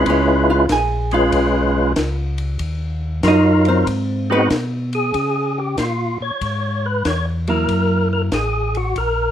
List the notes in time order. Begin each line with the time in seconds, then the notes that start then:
Already playing: G#3 C#4 E4 F4 B4
0.06 C#2 C#4 C#5, kick, ride
0.50 F4 F5
0.69 A#1 G#4 G#5, kick, snare, hi-hat pedal, ride
1.11 G#3 C#4 F4 B4 F5, ride
1.32 B1, kick, ride
1.96 C#2, kick, snare, hi-hat pedal, ride
2.38 ride
2.59 D#2, kick, ride
3.23 F#2 F#3 D#4 F4 A#4, kick, snare, hi-hat pedal, ride
3.28 D#4 D#5
3.65 C5, ride
3.69 C4
3.87 G#2, kick, ride
4.30 G#3 B3 C4 D#4 F#4 B4
4.50 B2, kick, snare, hi-hat pedal, ride
4.93 G#4, ride
5.14 C#3, kick, ride
5.58 G4
5.78 A#2 F4, kick, snare, hi-hat pedal, ride
6.21 A#2 C#5
6.41 G#2, kick, ride
6.86 B4
7.05 E2 C#5, kick, snare, hi-hat pedal, ride
7.47 F#3 A#3 E4 A#4, ride
7.68 F#2, kick, ride
8.13 A#4
8.32 A1 G#4, kick, snare, hi-hat pedal, ride
8.75 F#4, ride
8.96 A#1 A#4, kick, ride